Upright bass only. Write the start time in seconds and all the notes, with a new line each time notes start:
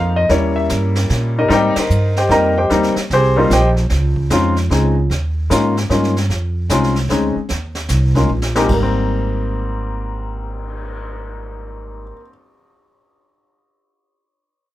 Already playing: F2
0.30 D#2
0.70 G2
1.10 A#2
1.50 G#2
1.76 muted upright bass stroke
1.90 G2
2.29 F2
2.70 D#2
2.96 muted upright bass stroke
3.10 C2
3.50 A#1
3.91 C#2
4.30 F2
4.70 C#2
5.10 D#2
5.50 G#2
5.90 G2
6.29 F2
6.69 C2
7.09 D2
7.36 muted upright bass stroke
7.50 D#2
7.90 C2
8.29 A#1
8.69 G#1